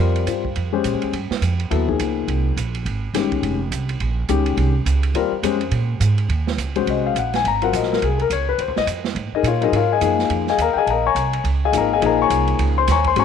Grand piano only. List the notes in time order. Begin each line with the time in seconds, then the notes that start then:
Already playing: G3 C4 F4 A#4
0.27 G3 C4 F4 C5
0.73 G#3 C#4 G4 C5
1.70 F#3 B3 E4 A4
1.87 F3 A#3 D#4 G#4
3.14 D#3 G#3 C#4 G4
4.29 D#3 G#3 C#4 G4
5.15 G3 C4 F4 A#4
5.44 G#3 C#4 G4 C5
6.76 G#3 C#4 F#4 C5
6.90 D#5
7.06 F5
7.19 F#5
7.36 G#5
7.48 A#5
7.62 F#3 C4 F4 A#4 F#5
7.76 D#5
7.93 A#4
8.04 G#4
8.17 A4
8.21 A#4
8.33 C#5
8.49 B4
8.61 C5
8.78 D#5
9.35 D#4 G#4 A#4 D#5
9.47 F4 A#4 C#5 F5
9.60 F#3 C4 D#4 F4 G#4 A#4 D#5
9.76 F4 A#4 C#5 F5
9.92 G#4 D#5 F5 G#5
10.01 F3 A#3 D#4 G#4
10.50 G#4 D#5 F5 G#5
10.62 A#4 D#5 F5 A#5
10.73 G5
10.77 G#4 D#5 F5 G#5
10.85 A5
10.90 A#4 D#5 F5 A#5
11.06 C#5 G#5 A#5 C#6
11.65 G#4 D#5 F5 G#5
11.73 F3 A#3 D#4 G#4
11.77 A#4 D#5 F5 A#5
11.93 G#4 D#5 F5 G#5
12.02 F3 A#3 D#4 G#4 A#4
12.06 D#5 F5 A#5
12.22 C#5 G#5 A#5 C#6
12.78 C5 C6
12.91 C#5 G#5 A#5 C#6
13.07 C5 C6
13.16 G#3 C#4 F#4 C5 C#5 G#5 A#5 C#6